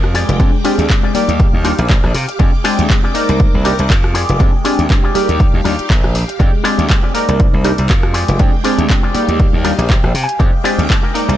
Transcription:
Already playing: F2 A#4 D6, impact
0.04 cross-stick
0.14 G#3 F4 G4 G#4 D5 G5, open hi-hat
0.29 F1, closed hi-hat
0.39 F2 G#3 C4 D4 G4, kick, closed hi-hat
0.64 G#3 C4 D4 F4 G4 G#4 D5, open hi-hat
0.78 D2, closed hi-hat
0.89 G#3 C4 D4 G4, kick, clap, closed hi-hat
1.03 F4 G4 G#4 D5
1.14 G3 A#3 D#4 F4 G4 D5 F5, muted slap bass stroke, open hi-hat
1.28 D#2, closed hi-hat
1.40 kick, closed hi-hat
1.54 D#2
1.64 G3 A#3 D4 D#4 F4 G4 D5, cross-stick, open hi-hat
1.79 A#1, closed hi-hat
1.90 kick, clap, closed hi-hat
2.04 A#1, cross-stick
2.14 C3, muted clean electric guitar stroke, open hi-hat
2.28 muted clean electric guitar stroke, closed hi-hat
2.39 F2 G#3 C4 D4 G4 G5, kick, closed hi-hat
2.64 G#3 C4 D4 F4 G4 G#4 D5, open hi-hat
2.79 D2, closed hi-hat
2.89 G#3 C4 D4 G4, kick, clap, closed hi-hat
3.03 F4 G4 G#4 D5
3.14 A#3 D#4 A#4 C5 D5, open hi-hat
3.29 C2, closed hi-hat
3.40 kick, closed hi-hat
3.54 C2
3.64 A#3 D4 D#4 G4 A#4 C5 D5, cross-stick, open hi-hat
3.79 C2, closed hi-hat
3.90 F2, kick, clap, closed hi-hat
4.04 cross-stick
4.14 G#3 F4 G4 G#4 D5 G5, open hi-hat
4.29 F1, closed hi-hat
4.39 F2 G#3 C4 D4 G4, kick, closed hi-hat
4.64 G#3 C4 D4 F4 G4 G#4 D5, open hi-hat
4.79 D2, closed hi-hat
4.89 G#3 C4 D4 G4, kick, clap, closed hi-hat
5.03 F4 G4 G#4 D5
5.14 G3 A#3 D#4 F4 G4 D5 F5, muted slap bass stroke, open hi-hat
5.29 D#2, closed hi-hat
5.40 kick, closed hi-hat
5.54 D#2
5.64 D#2 G3 A#3 D4 D#4 F4 G4 D5, cross-stick, open hi-hat
5.79 muted slap bass stroke, closed hi-hat
5.90 A#1, kick, clap, closed hi-hat
6.04 cross-stick
6.14 muted clean electric guitar stroke, open hi-hat
6.28 muted clean electric guitar stroke, closed hi-hat
6.39 F2 G#3 C4 D4 G4 G5, kick, closed hi-hat
6.64 G#3 C4 D4 F4 G4 G#4 D5, open hi-hat
6.79 D2, closed hi-hat
6.89 G#3 C4 D4 G4, kick, clap, closed hi-hat
7.03 F4 G4 G#4 D5
7.14 A#3 D#4 A#4 C5 D5, open hi-hat
7.28 C2, closed hi-hat
7.40 kick, closed hi-hat
7.54 C2
7.64 A#3 D4 D#4 G4 A#4 C5 D5, cross-stick, open hi-hat
7.78 C2, closed hi-hat
7.89 F2, kick, clap, closed hi-hat
8.03 cross-stick
8.14 G#3 F4 G4 G#4 D5 G5, open hi-hat
8.28 F1, closed hi-hat
8.39 F2 G#3 C4 D4 G4, kick, closed hi-hat
8.64 G#3 C4 D4 F4 G4 G#4 D5, open hi-hat
8.78 D2, closed hi-hat
8.89 G#3 C4 D4 G4, kick, clap, closed hi-hat
9.03 F4 G4 G#4 D5
9.14 G3 A#3 D#4 F4 G4 D5 F5, muted slap bass stroke, open hi-hat
9.28 D#2, closed hi-hat
9.40 kick, closed hi-hat
9.53 D#2
9.64 G3 A#3 D4 D#4 F4 G4 D5, cross-stick, open hi-hat
9.73 D#5
9.78 A#1, closed hi-hat
9.90 G5, kick, clap, closed hi-hat
10.04 A#1, cross-stick
10.14 C3, muted clean electric guitar stroke, open hi-hat
10.24 G#5
10.28 muted clean electric guitar stroke, closed hi-hat
10.39 F2 G#3 C4 D4 G4 G5 D6, kick, closed hi-hat
10.64 G#3 C4 D4 F4 G4 G#4 D5, open hi-hat
10.79 D2, closed hi-hat
10.89 G#3 C4 D4 G4, kick, clap, closed hi-hat
11.03 F4 G4 G#4 A#4
11.14 A#3 D#4 A#4 C5 D5 D6, open hi-hat
11.28 C2, closed hi-hat

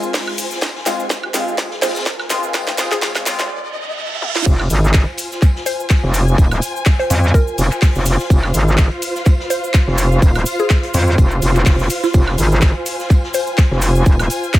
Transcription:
Already playing: G#3 C4 F4 A#4 C5 G#5, riser
0.03 cabasa
0.14 kick, snare, open hi-hat, cabasa
0.27 snare, high woodblock
0.38 open hi-hat, tambourine, cabasa
0.51 snare, cabasa
0.61 kick, snare, tambourine, cabasa
0.75 snare
0.86 G#3 C4 F4, snare, open hi-hat, tambourine, cabasa
1.00 cabasa
1.10 kick, snare, tambourine, cabasa
1.23 high woodblock
1.34 G#3 C4 F4, snare, open hi-hat, cabasa
1.48 cabasa
1.58 kick, snare, tambourine, cabasa
1.71 snare
1.82 G#3 C4 F4 C5, snare, open hi-hat, tambourine, cabasa
1.89 snare, tambourine
1.95 snare, tambourine, cabasa
2.00 snare, tambourine
2.06 kick, snare, cabasa
2.19 snare, high woodblock
2.30 G#3 C4 F4, snare, open hi-hat, tambourine, cabasa
2.43 cabasa
2.54 G#3 C4 F4, kick, snare, tambourine, cabasa, high woodblock
2.67 snare, closed hi-hat, cabasa
2.78 G#3 C4 F4, snare, open hi-hat, tambourine, cabasa
2.91 G#4, snare, cabasa
3.02 G#3 C4 F4, kick, snare, tambourine, cabasa
3.15 snare, closed hi-hat, cabasa, high woodblock
3.26 G#3 C4 F4, snare, open hi-hat, tambourine, cabasa
3.39 snare, cabasa
3.50 reverse cymbal
4.22 high tom
4.35 F4, snare
4.46 F1 F4, kick, crash, tambourine, cabasa
4.60 snare, high woodblock
4.64 C5 G#5
4.70 G#1, open hi-hat, tambourine, cabasa
4.84 cabasa
4.94 kick, snare, clap, tambourine, cabasa
5.17 open hi-hat, tambourine, cabasa
5.31 snare, cabasa
5.42 kick, clap, tambourine, cabasa
5.56 snare
5.66 C5, open hi-hat, tambourine, cabasa
5.80 cabasa
5.90 kick, snare, clap, tambourine, cabasa
6.04 F1, snare
6.14 open hi-hat, tambourine, cabasa
6.28 cabasa
6.38 D#1, kick, tambourine, cabasa
6.51 closed hi-hat, cabasa, high woodblock
6.61 open hi-hat, tambourine, cabasa
6.76 cabasa
6.86 kick, snare, clap, tambourine, cabasa
6.99 C5, closed hi-hat
7.10 F2, open hi-hat, tambourine, cabasa
7.23 cabasa
7.34 A#4, kick, tambourine, cabasa
7.48 cabasa
7.58 F1, open hi-hat, tambourine, cabasa
7.71 clap, cabasa
7.82 kick, snare, clap, open hi-hat, cabasa
7.95 F1, snare, cabasa
8.06 open hi-hat, tambourine, cabasa
8.19 snare, cabasa
8.30 F1, kick, tambourine, cabasa
8.43 snare, high woodblock
8.48 F5
8.54 G#1, open hi-hat, tambourine, cabasa
8.68 cabasa
8.77 kick, snare, clap, tambourine, cabasa
9.02 open hi-hat, tambourine, cabasa
9.15 snare, cabasa
9.26 kick, clap, tambourine, cabasa
9.40 snare
9.50 C5, open hi-hat, tambourine, cabasa
9.64 cabasa
9.74 kick, snare, clap, tambourine, cabasa
9.88 F1, snare
9.98 open hi-hat, tambourine, cabasa
10.12 cabasa
10.22 D#1, kick, tambourine, cabasa
10.35 closed hi-hat, cabasa, high woodblock
10.46 open hi-hat, tambourine, cabasa
10.59 G#4, cabasa
10.70 kick, snare, clap, tambourine, cabasa
10.83 closed hi-hat
10.94 F2, open hi-hat, tambourine, cabasa
11.07 cabasa
11.18 F1, kick, tambourine, cabasa
11.31 cabasa
11.42 F1, open hi-hat, tambourine, cabasa
11.55 clap, cabasa
11.66 F1, kick, snare, clap, open hi-hat, cabasa
11.79 snare, cabasa
11.90 open hi-hat, tambourine, cabasa
12.03 F4, snare, cabasa
12.14 F1, kick, tambourine, cabasa
12.28 snare, high woodblock
12.32 G#5
12.38 G#1, open hi-hat, tambourine, cabasa
12.52 cabasa
12.62 kick, snare, clap, tambourine, cabasa
12.86 open hi-hat, tambourine, cabasa
12.99 snare, cabasa
13.10 kick, clap, tambourine, cabasa
13.24 snare
13.34 C5, open hi-hat, tambourine, cabasa
13.47 cabasa
13.58 kick, snare, clap, tambourine, cabasa
13.71 F1, snare
13.81 open hi-hat, tambourine, cabasa
13.95 cabasa
14.06 D#1, kick, tambourine, cabasa
14.19 closed hi-hat, cabasa, high woodblock
14.30 open hi-hat, tambourine, cabasa
14.43 cabasa
14.54 kick, snare, clap, tambourine, cabasa

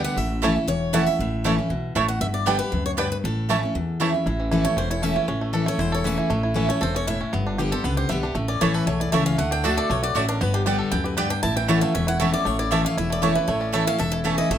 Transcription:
Already playing: D3 G3 B3 G4
0.04 F#5
0.16 A1 A2 E5
0.42 E3 A3 C#4 E4 C#5 A5
0.56 C#4 E4
0.67 E1 E2 C#5
0.93 E3 A3 C#4 E4 C#5 F#5 A5
1.06 C#4 E4 E5
1.19 A1 A2
1.44 E3 A3 C#4 E4 C#5 A5
1.58 C#4 E4
1.70 B1 B2
1.95 A1 A2 A3 C#4 E4 C#5 A5
2.08 F#5
2.21 G1 G2 E5
2.34 D5
2.46 D3 G3 B3 D4 G4 B4 D5 G5
2.59 B3 G4 B4
2.72 D2 F#2
2.86 C#5
2.97 G2 B3 D4 G4 B4 D5 G5
3.12 B4
3.24 A1 A2 A4
3.49 E3 A3 C#4 E4 C#5 A5
3.63 C#4 E4
3.75 E2
4.00 E3 A3 C#4 E4 C#5 A5
4.14 C#4 E4
4.26 A1 A2 E4
4.40 E3
4.51 E3 A3 C#4 E4
4.65 A3 C#4 E4 C#5
4.76 E1 E2 C#4 C5
4.91 E4 C#5
5.02 E3 A3 C#4 E4 E5
5.16 C#4 E4
5.28 A1 A2 C#4
5.41 A3
5.53 E3 A3 C#4 E4 A4
5.66 A3 C#4 E4 C#5
5.78 E1 E2 E4 C5
5.92 A4 C#5
6.04 E3 A3 C#4 E4 E5
6.18 E4
6.30 A1 A2 A3
6.43 E4
6.54 E3 A3 C#4 E4
6.69 A3 C#4 E4 C#5
6.81 E1 B2 A4 C5
6.95 C#4 C#5
7.07 A2 E4 E5
7.21 C#4
7.33 G1 G2 B3
7.47 D4
7.58 D3 G3 B3 G4
7.72 B3 G4 A4 C5
7.84 C#2 D3 B3 B4
7.97 G4 C5
8.09 B1 D3 G3 B3 G4 E5
8.23 B3 D4 G4
8.35 A1 A2 A3
8.48 C#4 D5
8.61 A1 E3 A3 C#4 E4 C#5 A5
8.74 A4 B4
8.86 B1 E2 A3 C#5
9.00 E4 D5
9.12 C#2 E3 A3 C#4 E4 C#5 E5 A5
9.26 C#4 F5
9.38 D2 D3 A3 F#5
9.51 D4 G5
9.64 D3 A3 D4 F#4 D5 E5 A5
9.77 A4 D5
9.90 B1 B2 A3 C#5
10.03 F#4 D5
10.15 A1 A2 A3 F#4 C#5 D5 A5
10.29 D4 A#4
10.41 G1 G2 B3 B4
10.54 D4 G4
10.66 D3 G3 B3 G4 D5 G5
10.79 A4
10.91 D2 F#2 B3 G5
11.04 G4 B4
11.17 G2 B3 G4 D5 G5
11.30 D4 G5
11.43 A1 A2 E4 A5
11.56 E3 G5
11.68 E3 A3 C#4 E4 C#5 F#5 A5
11.81 A3 C#4 E4 F5
11.95 E1 E2 C#4 E5
12.07 E4 F#5
12.20 E3 A3 C#4 E4 C#5 E5 A5
12.32 C#4 E4 D5
12.45 A1 A2 A3 C#5
12.59 E4 D5
12.71 E3 A3 C#4 E4 C#5 E5 A5
12.84 A3 C#4 E4 F5
12.97 E1 E2 E4 E5
13.10 A3 D5
13.22 E3 A3 C#4 E4 A4 C#5 A5
13.35 C#4 E4 B4
13.48 A1 A2 A3 C#5
13.61 C#4 D5
13.73 E3 A3 C#4 E4 A4 C#5 E5 A5
13.87 C#4 E4 F5
13.98 E1 E2 A4 E5
14.12 E4 A4
14.24 E3 A3 C#4 E4 A4 C#5 A5
14.38 E4 D#5
14.50 A1 A2 A3 E5

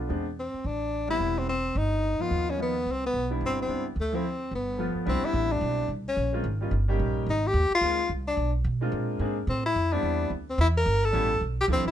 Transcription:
0.08 E2 G#3 B3 C4 D4
0.40 C4
0.54 muted upright bass stroke
0.64 A1 D4
1.08 G3 B3 C4 E4
1.20 E1
1.39 C4
1.49 C4
1.75 G1 D#4
2.19 F3 A#3 B3 D#4 F4, muted upright bass stroke
2.31 D#2
2.50 C#4
2.57 F3 A#3 B3 D#4
2.62 B3
2.86 C2
2.91 C4
3.06 B3
3.14 B1
3.30 G3 B3 D4 E4
3.41 G1
3.46 C4
3.62 C4
3.68 C#2 G3 B3 D4 E4
3.96 D2
4.01 A3
4.12 F3 A3 C4 E4
4.51 G1 B3
4.78 F3 A3 B3 F4
4.95 muted upright bass stroke
5.05 C2 G3 B3 C4 D4 E4
5.22 E4, muted upright bass stroke
5.34 A1
5.52 D4
5.61 B1
5.88 C2
6.09 C#4
6.17 A#1
6.32 G#3 A#3 C4 C#4 F4
6.44 G#1
6.61 G3 A#3 C#4 D#4 F4
6.71 G1
6.88 G3 A#3 C#4 D#4 G4
6.99 A#1
7.26 G#1 D#4
7.47 G4
7.53 D#2
7.71 muted upright bass stroke
7.75 F4
7.81 D2 G#3 A#3 C4 D#4 F4
8.09 C2
8.28 D4
8.37 B1
8.64 B2
8.81 G#3 A#3 C4 D4 F4
8.92 A#2
9.19 G#2 G#3 A#3 C4 D4 G#4
9.47 A2 C4
9.66 E4
9.75 F2
9.92 G3 B3 C4 D4 E4
10.03 E2
10.30 D2
10.50 C4
10.58 E2 E4
10.78 A#4
10.86 G1
11.05 A4
11.12 A1 G3 A3 B3 C#4 E4
11.41 B1
11.61 G4
11.68 D2 F3 A3 C4 D4 E4
11.73 C4
11.77 C2
11.85 A1 E4

